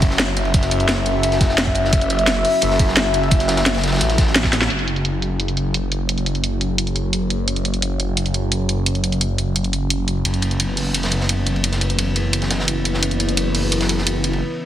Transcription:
Already playing: F#1 C#4 F#4 E5
0.02 kick, closed hi-hat, ride
0.10 snare
0.18 snare, closed hi-hat, ride
0.36 closed hi-hat, ride
0.45 ride
0.54 kick, closed hi-hat, ride
0.62 snare, closed hi-hat
0.71 F#1, closed hi-hat, ride
0.80 closed hi-hat
0.89 snare, closed hi-hat, ride
1.05 closed hi-hat, ride
1.23 closed hi-hat, ride
1.32 snare, closed hi-hat
1.41 kick, snare, closed hi-hat, ride
1.49 snare
1.58 F#1, snare, closed hi-hat, ride
1.67 kick
1.75 closed hi-hat, ride
1.84 snare
1.93 F#1, kick, closed hi-hat, ride
2.01 closed hi-hat
2.10 closed hi-hat, ride
2.19 closed hi-hat
2.27 snare, closed hi-hat, ride
2.44 closed hi-hat, open hi-hat
2.61 F#1, closed hi-hat, ride
2.70 snare
2.79 kick, closed hi-hat, ride
2.88 snare
2.96 snare, closed hi-hat, ride
3.14 closed hi-hat, ride
3.23 ride
3.31 kick, closed hi-hat, ride
3.40 snare, closed hi-hat
3.48 F#1, snare, closed hi-hat, ride
3.57 snare, closed hi-hat, ride
3.66 snare, closed hi-hat, ride
3.74 snare, ride
3.83 snare, closed hi-hat, ride
3.87 snare, ride
3.92 snare, ride
3.96 snare, ride
4.01 A1, closed hi-hat, ride
4.09 snare, closed hi-hat
4.18 kick, snare, closed hi-hat, ride
4.27 snare
4.36 snare, closed hi-hat, ride
4.44 kick, snare
4.53 snare, closed hi-hat, ride
4.61 snare
4.70 F#1 C#4 F#4 C#5, closed hi-hat
4.79 closed hi-hat
4.88 closed hi-hat
4.96 closed hi-hat
5.05 closed hi-hat
5.22 closed hi-hat
5.40 closed hi-hat
5.48 closed hi-hat
5.57 closed hi-hat
5.74 closed hi-hat
5.92 closed hi-hat
6.09 closed hi-hat
6.18 closed hi-hat
6.26 closed hi-hat
6.35 closed hi-hat
6.44 closed hi-hat
6.61 closed hi-hat
6.78 closed hi-hat
6.87 closed hi-hat
6.96 closed hi-hat
7.13 closed hi-hat
7.30 closed hi-hat
7.48 closed hi-hat
7.56 closed hi-hat
7.65 closed hi-hat
7.74 closed hi-hat
7.82 closed hi-hat
8.00 closed hi-hat
8.17 closed hi-hat
8.26 closed hi-hat
8.34 closed hi-hat
8.52 closed hi-hat
8.69 closed hi-hat
8.86 closed hi-hat
8.95 closed hi-hat
9.04 closed hi-hat
9.12 closed hi-hat
9.21 closed hi-hat
9.38 closed hi-hat
9.56 closed hi-hat
9.64 closed hi-hat
9.73 closed hi-hat
9.90 closed hi-hat
10.08 closed hi-hat
10.25 F#1 E4 B4, closed hi-hat, ride
10.34 closed hi-hat
10.42 closed hi-hat, ride
10.51 closed hi-hat
10.60 closed hi-hat, ride
10.77 closed hi-hat, open hi-hat
10.94 closed hi-hat, ride
11.03 snare, closed hi-hat
11.11 closed hi-hat, ride
11.20 snare
11.29 closed hi-hat, ride
11.46 closed hi-hat, ride
11.56 ride
11.64 closed hi-hat, ride
11.72 snare, closed hi-hat
11.81 closed hi-hat, ride
11.90 closed hi-hat
11.99 closed hi-hat, ride
12.16 closed hi-hat, ride
12.33 closed hi-hat, ride
12.42 snare, closed hi-hat
12.50 snare, closed hi-hat, ride
12.59 snare
12.68 closed hi-hat, ride
12.85 closed hi-hat, ride
12.94 snare
13.03 closed hi-hat, ride
13.11 closed hi-hat
13.20 closed hi-hat, ride
13.29 closed hi-hat
13.37 closed hi-hat, ride
13.55 closed hi-hat, open hi-hat
13.72 closed hi-hat, ride
13.81 snare, closed hi-hat
13.89 closed hi-hat, ride
13.98 snare
14.07 closed hi-hat, ride
14.24 closed hi-hat, ride
14.33 ride

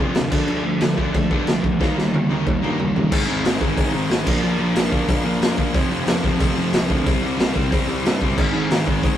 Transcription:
Already playing: C4
0.00 A#1 F2 C3 F3 A3
0.15 D2 F2 C3, snare, crash
0.31 D2 D3 F3 A3 D4, kick, crash
0.48 D2 D3 F3 A3 D4, crash
0.64 D2 D3 F3 A3
0.81 D3 F3 A3, snare, crash
0.96 D2 D3 F3 A3 D4, kick
1.13 D2 D3 F3 A3 D4, kick, crash
1.30 G2 D3 F3 A3 D4, kick
1.47 C2 D3 F3 A3, snare, crash
1.64 E2 D3 F3 A3, kick
1.79 D#2 D#3 G3 A#3 D#4, kick, snare
1.97 D#2 D#3 G3 A#3, snare
2.13 D#3 G3 A#3, high tom
2.29 D#2 D#3 G3 A#3 D#4, high tom
2.46 D#2 D#3 G3 A#3, kick, mid tom
2.62 G2 D#3 G3 A#3 D#4, mid tom
2.78 C#2 D#3 G3 A#3 D#4, floor tom
2.94 A1 D#3 G3 A#3, floor tom
3.12 G#1 G#2 D#3 G#3 C4 D#4, kick, crash
3.27 G#1 G#2 D#3 G#3 C4 D#4
3.43 G#1 G#2 D#3 G#3 C4 D#4, snare, open hi-hat
3.61 G#1 G#2 D#3 G#3 C4 D#4, kick
3.77 G#1 G#2 D#3 G#3 C4 D#4, kick, open hi-hat
3.94 G#1 G#2 D#3 G#3 C4 D#4
4.09 G#1 G#2 D#3 G#3 C4 D#4, snare, open hi-hat
4.26 A#1 A#2 F3 A#3 D4, kick, crash
4.43 A#1 A#2 F3 A#3 D4
4.58 A#1 A#2 F3 A#3 D4
4.75 A#1 A#2 F3 A#3 D4, snare, open hi-hat
4.92 A#1 A#2 F3 A#3 D4, kick
5.08 A#1 A#2 F3 A#3 D4, kick, open hi-hat
5.25 A#1 A#2 F3 A#3 D4
5.42 F2 A#2 F3 A#3 D4, snare, open hi-hat
5.58 A#1 A#2 F3 A#3 D4, kick
5.74 F1 F2 C3 F3 A3 C4, kick, open hi-hat
5.90 F1 F2 C3 F3 A3 C4
6.06 F1 F2 C3 F3 A3 C4, snare, open hi-hat
6.23 F1 F2 C3 F3 A3 C4, kick
6.40 F1 F2 C3 F3 A3 C4, kick, open hi-hat
6.56 F1 F2 C3 F3 A3 C4
6.72 C2 F2 C3 F3 A3 C4, snare, open hi-hat
6.90 D2 F2 C3 F3 A3 C4, kick
7.06 C2 C3 G3 C4 E4, kick, open hi-hat
7.23 C2 C3 G3 C4 E4
7.38 C2 C3 G3 C4 E4, snare, open hi-hat
7.56 C2 C3 G3 C4 E4, kick
7.72 C2 C3 G3 C4 E4, kick, open hi-hat
7.88 C2 C3 G3 C4 E4
8.05 G2 C3 G3 C4 E4, snare, open hi-hat
8.21 G1 C3 G3 C4 E4, kick
8.38 G#1 G#2 D#3 G#3 C4 D#4, kick, crash
8.53 G#1 G#2 D#3 G#3 C4 D#4
8.71 G#1 G#2 D#3 G#3 C4 D#4, snare, open hi-hat
8.87 G#1 G#2 D#3 G#3 C4 D#4, kick
9.03 G#1 G#2 D#3 G#3 C4 D#4, kick, open hi-hat

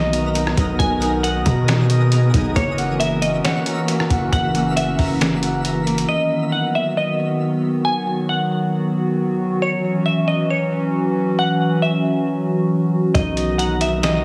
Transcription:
Already playing: B1 D#3 A#3 B3 D#4 F#4 A#4 D#5 A#5
0.13 A#5, closed hi-hat
0.35 D#4, closed hi-hat
0.47 cross-stick
0.57 B1 D#5, kick, closed hi-hat
0.79 B1 G#4 G#5, kick, closed hi-hat
1.02 D#4, closed hi-hat
1.23 D#5 F#5, closed hi-hat
1.45 B2 A#5, kick, closed hi-hat
1.68 D#4, snare, closed hi-hat
1.90 D#5, closed hi-hat
2.12 A#5, closed hi-hat
2.34 B1 D#4, kick, closed hi-hat
2.56 F#1 E3 A#3 C#4 F#4 C#5 E5, kick, closed hi-hat
2.78 F#5, closed hi-hat
3.00 E5 A#5, closed hi-hat
3.22 A#3 D#5, closed hi-hat
3.45 C#5 F#5, snare, closed hi-hat
3.66 A#5, closed hi-hat
3.88 A#3, closed hi-hat
4.00 cross-stick
4.10 F#1 F#5, kick, closed hi-hat
4.32 F#1 E4 F#5, kick, closed hi-hat
4.55 A#3, closed hi-hat
4.77 E5 F#5, closed hi-hat
4.98 F#1 A#5, kick, open hi-hat
5.21 A#3, snare, closed hi-hat
5.43 F#5, closed hi-hat
5.64 A#5, closed hi-hat
5.87 A#3, closed hi-hat
5.98 closed hi-hat
6.09 D#3 F#3 B3 F#4 D#5
6.52 F#5
6.75 E5
6.97 D#5
7.85 G#5
8.29 F#5
9.62 E3 C#4 C#5
10.06 E5
10.28 D#5
10.51 C#5
11.39 F#5
11.82 E5
13.14 B1 D#3 B3 D#4 A#4 D#5, kick, closed hi-hat
13.37 D#5, closed hi-hat
13.58 F#5 A#5, closed hi-hat
13.81 D#4 E5, closed hi-hat
14.03 D#5, snare, closed hi-hat

